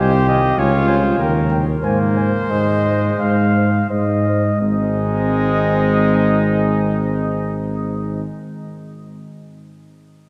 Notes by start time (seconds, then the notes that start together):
0.00 C2 G4 C5 D#5 G#5
0.28 D#5 G#5
0.58 C#2 F4 C#5 G#5
0.88 C5 C#5 G#5
1.18 D#2 A#4 G5
1.51 A#4 G5
1.83 G#2 A#3 C5 G#5
2.17 C5 G#5
2.50 G#2 G#3 C5 D#5
2.85 C5
3.19 G#2 C5 F5
3.54 C5
3.89 G#2 C5 D#5
4.26 C5
4.61 G#1 G#3 C4 D#4 D#5